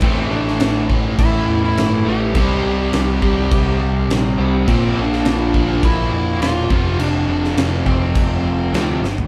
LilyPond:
<<
  \new Staff \with { instrumentName = "Lead electric guitar" } { \time 4/4 \key a \phrygian \tempo 4 = 103 c'8 d'4 r8 e'8. e'8. g'8~ | g'2~ g'8 r4. | c'8 d'4. e'4 f'4 | d'4 r8 c'2 r8 | }
  \new Staff \with { instrumentName = "Distorted electric guitar" } { \clef bass \time 4/4 \key a \phrygian <a, e a>4. <a, e a>2~ <a, e a>8 | <c g c'>4. <c g c'>2~ <c g c'>8 | <bes, f bes>4. <bes, f bes>2 <f, c f>8~ | <f, c f>4 <f, c f>2~ <f, c f>8 r8 | }
  \new Staff \with { instrumentName = "Overdriven electric guitar" } { \clef bass \time 4/4 \key a \phrygian <a, e a>2 <a, e a>2 | <c g c'>2 <c g c'>2 | <bes, f bes>2 <bes, f bes>4. <f, c f>8~ | <f, c f>4. <f, c f>2 r8 | }
  \new Staff \with { instrumentName = "Overdriven electric guitar" } { \clef bass \time 4/4 \key a \phrygian <a, e a>2.~ <a, e a>8 <a, e a>8 | <c g c'>2.~ <c g c'>8 <c g c'>8 | <bes, f bes>2.~ <bes, f bes>8 <f, c f>8~ | <f, c f>2. <f, c f>8 r8 | }
  \new Staff \with { instrumentName = "Picked electric bass" } { \clef bass \time 4/4 \key a \phrygian a,,8 a,,8 a,,8 a,,8 a,,8 e,8 g,,8 a,,8 | c,8 c,8 c,8 c,8 c,8 c,8 bes,,8 c,8 | bes,,8 bes,,8 bes,,8 bes,,8 bes,,8 f,8 e,,8 f,,8 | f,,8 f,,8 f,,8 f,,8 f,,8 f,,8 d,8 g,,8 | }
  \new DrumStaff \with { instrumentName = "Drums" } \drummode { \time 4/4 <cymc bd>8. sn16 <cymc sn>8 bd8 <cymc bd>4 <cymc sn>4 | <cymc bd>4 <cymc sn>8 bd8 <cymc bd>4 <cymc sn>4 | <cymc bd>8. sn16 <cymc sn>8 bd8 <cymc bd>4 <cymc sn>8 bd8 | cymc8. sn16 <cymc sn>8 bd8 <cymc bd>4 <cymc sn>8 sn16 tomfh16 | }
>>